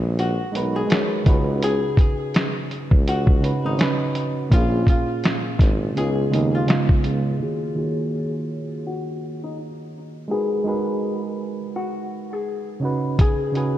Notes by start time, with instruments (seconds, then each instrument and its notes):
Already playing: tuba A#1, reed electric piano G#3 D#4 F#4 A#4 B4
0.19 hollow-body jazz guitar F#4, closed hi-hat
0.52 tuba B1, reed electric piano G#3 D#4 F#4 A#4, closed hi-hat
0.57 reed electric piano B4
0.76 hollow-body jazz guitar G#4
0.87 reed electric piano G#3 D#4 F#4 A#4, closed hi-hat
0.92 reed electric piano C#5, snare
1.24 tuba C#2, reed electric piano C#3 C#4 D#4, kick, closed hi-hat
1.28 reed electric piano F#4 B4
1.63 hollow-body jazz guitar G#4, closed hi-hat
1.97 hollow-body jazz guitar G#4, kick, closed hi-hat
2.34 snare, closed hi-hat
2.71 closed hi-hat
2.91 tuba C#2, kick
3.08 hollow-body jazz guitar F#4, closed hi-hat
3.27 kick
3.40 reed electric piano C#3 C#4 D#4 F#4, closed hi-hat
3.45 reed electric piano B4
3.64 tuba G#1, hollow-body jazz guitar D#4
3.77 reed electric piano C#3 C#4 D#4, snare, closed hi-hat
3.81 reed electric piano F#4 B4
4.15 closed hi-hat
4.50 tuba A#1, reed electric piano A#2 A#3 C#4, kick, closed hi-hat
4.54 hollow-body jazz guitar F4, reed electric piano F4 G#4
4.87 hollow-body jazz guitar F4, kick, closed hi-hat
5.23 snare, closed hi-hat
5.59 tuba G#1, kick, snare, closed hi-hat
5.93 tuba C#2, reed electric piano C#3 G#3 B3 D#4, closed hi-hat
5.98 reed electric piano F4, hollow-body jazz guitar G#4
6.30 tuba D#2, reed electric piano C#3 G#3 B3 D#4, closed hi-hat
6.36 reed electric piano G#4
6.55 hollow-body jazz guitar F4
6.67 reed electric piano C#3 G#3 B3 D#4, snare, closed hi-hat
6.72 reed electric piano F4
6.89 kick
7.04 tuba C#2, closed hi-hat
7.39 reed electric piano D#3 A#3 F4 F#4, hollow-body jazz guitar G#4
7.44 reed electric piano G#4 C#5
7.74 reed electric piano D#3 A#3 F4 F#4, hollow-body jazz guitar G#4
7.78 reed electric piano G#4 C#5
8.87 hollow-body jazz guitar F#4
9.44 hollow-body jazz guitar D#4
10.28 reed electric piano G#3 D#4 F#4, hollow-body jazz guitar G#4
10.32 reed electric piano A#4 B4
10.64 reed electric piano G#3 D#4 F#4 A#4, hollow-body jazz guitar G#4
10.69 reed electric piano B4
11.76 hollow-body jazz guitar F#4
12.33 hollow-body jazz guitar G#4
12.80 reed electric piano C#3 C#4 D#4 F#4
12.85 reed electric piano B4
13.19 hollow-body jazz guitar G#4, kick, closed hi-hat
13.52 reed electric piano C#3 C#4 D#4 F#4, closed hi-hat
13.57 hollow-body jazz guitar G#4, reed electric piano B4